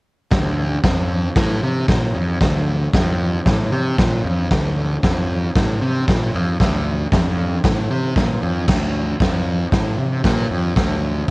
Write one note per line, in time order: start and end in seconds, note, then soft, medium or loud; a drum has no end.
0.31 0.76 D2 medium
0.31 kick loud
0.31 snare loud
0.31 open hi-hat medium
0.83 1.29 F2 medium
0.83 kick loud
0.83 snare loud
0.83 open hi-hat medium
1.36 1.59 A2 medium
1.36 kick loud
1.36 snare loud
1.36 open hi-hat medium
1.63 1.85 C3 medium
1.88 2.11 A#2 medium
1.88 kick loud
1.88 snare loud
1.88 open hi-hat medium
2.15 2.38 F2 medium
2.40 2.86 D2 medium
2.40 kick loud
2.40 snare loud
2.40 open hi-hat medium
2.93 3.38 F2 loud
2.93 kick loud
2.93 snare loud
2.93 open hi-hat medium
3.46 3.69 A2 medium
3.46 kick loud
3.46 snare loud
3.46 open hi-hat medium
3.72 3.95 C3 medium
3.98 4.21 A#2 medium
3.98 kick loud
3.98 snare loud
3.98 open hi-hat medium
4.24 4.47 F2 medium
4.50 4.95 D2 medium
4.50 kick loud
4.50 snare loud
4.50 open hi-hat medium
5.03 5.48 F2 loud
5.03 kick loud
5.03 snare loud
5.03 open hi-hat medium
5.55 5.78 A2 loud
5.55 kick loud
5.55 snare loud
5.55 open hi-hat medium
5.81 6.04 C3 medium
6.08 6.30 A#2 medium
6.08 kick loud
6.08 snare loud
6.08 open hi-hat medium
6.34 6.56 F2 medium
6.60 7.05 D2 loud
6.60 kick loud
6.60 snare loud
6.60 open hi-hat medium
7.12 7.57 F2 medium
7.12 kick loud
7.12 snare loud
7.12 open hi-hat medium
7.64 7.86 A2 loud
7.64 kick loud
7.64 snare loud
7.64 open hi-hat medium
7.91 8.13 C3 medium
8.16 8.38 A#2 medium
8.16 kick loud
8.16 snare loud
8.16 open hi-hat medium
8.42 8.65 F2 medium
8.68 9.13 D2 loud
8.68 kick loud
8.68 snare loud
8.68 crash medium
9.20 9.65 F2 medium
9.20 kick loud
9.20 snare loud
9.20 open hi-hat medium
9.72 9.95 A2 loud
9.72 kick loud
9.72 snare loud
9.72 open hi-hat medium
9.98 10.21 C3 medium
10.24 10.47 A#2 medium
10.24 kick loud
10.24 snare loud
10.24 open hi-hat medium
10.50 10.73 F2 medium
10.76 11.21 D2 loud
10.76 kick loud
10.76 snare loud
10.76 open hi-hat medium